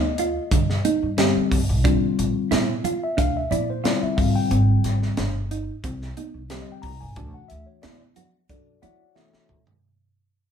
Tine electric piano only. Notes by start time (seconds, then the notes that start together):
Already playing: D#5
1.17 D3 G3 C4 G4
1.84 D3 G3 C4 F4
3.04 E5
3.19 F5
3.37 E5
3.51 D5
3.70 C5
3.84 D3 G3 C4 E4 D5
4.03 E5
4.17 D3 G3 C4 F4 F5
4.36 G5
6.50 D3 G3 C4 G4 C5
6.62 D#5
6.72 G5
6.82 A#5
7.01 G#5
7.16 E3 A3 D4 F#4 A5
7.34 F#5
7.48 E5
7.67 C#5
7.82 D5
8.50 D4 F#4 A4 D5
8.82 F#4 C#5 D5 F#5
9.15 E3 A3 D4 E4 F#4 A4 C#5 E5